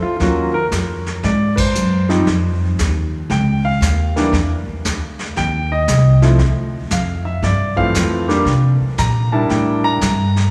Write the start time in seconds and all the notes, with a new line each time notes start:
0.02 F4, muted upright bass stroke
0.17 D#2 F#3 C#4 F4, brush sweep, snare
0.21 A#3 F4 F#4
0.54 A#4
0.71 F2, snare, hi-hat pedal
1.06 snare
1.23 G#2 D5, brush sweep, snare
1.56 B4, kick, crash
1.60 C5
1.75 F#2, hi-hat pedal
2.09 F3 G3 C4 D#4, snare
2.27 F2, brush sweep, snare
2.79 D#2, snare, hi-hat pedal
3.30 C#2 G5, brush sweep, snare
3.65 F5
3.81 D#2, snare, hi-hat pedal
4.16 E3 G3 A#3 D4, snare
4.32 E2, brush sweep, snare
4.68 muted upright bass stroke
4.85 D2, snare, hi-hat pedal
5.19 snare
5.36 D#2 G5, brush sweep, snare
5.72 D#5
5.88 C2, snare, hi-hat pedal
6.22 F3 A3 C4 E4, snare
6.38 D2, brush sweep, snare
6.90 F2 F5, snare, hi-hat pedal
7.25 E5
7.42 G2 D5, brush sweep, snare
7.76 E3 F3 A3 C4 F5, kick
7.94 F2, snare, hi-hat pedal
8.28 G3 A#3 D4 G4, snare
8.45 C3, brush sweep, snare
8.81 muted upright bass stroke
8.98 A#2 A#5, snare, hi-hat pedal
9.32 G3 D4 E4 A#4 A5
9.49 A2 G5, brush sweep, snare
9.84 A#5
10.01 G2, snare, hi-hat pedal
10.36 snare